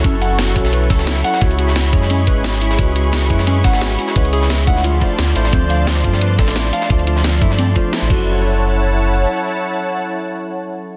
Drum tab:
CC |----------------|----------------|----------------|----------------|
RD |x-x-x-x-x-x-x-x-|xxx-x-x-x-x-x-x-|x-x-x-x-x-x-x-x-|xxx-x-x-x-x-x-x-|
HH |x-x-x-x-x-x-x-o-|x-x-x-x-x-x-x-o-|x-x-x-x-x-x-x-o-|x-x-x-x-x-x-x-o-|
SH |-xx---x---x---x-|-xx--xx--xx--xx-|-xx---x---x---x-|-xx---x---x---x-|
SD |----oo-o--oooo-o|---oo--o----oo-o|----oo-o--oooo-o|---oo--o----oo-o|
BD |o-----o---o-----|o-----o---o-----|o-----o---o-----|o-----o---o-----|

CC |----------------|--------------x-|----------------|----------------|
RD |x-x-x-x-x-xxx-x-|xxx-x-x-x---x---|----------------|----------------|
HH |x-x-x-x-x-x-x-o-|x-x-x-x-x-x-x---|----------------|----------------|
SH |-xx---x---x---x-|-xx---x---x--x--|----------------|----------------|
SD |----oo-o--oooo-o|---oo--o----oo--|----------------|----------------|
BD |o-----o---o-----|o-----o---o---o-|----------------|----------------|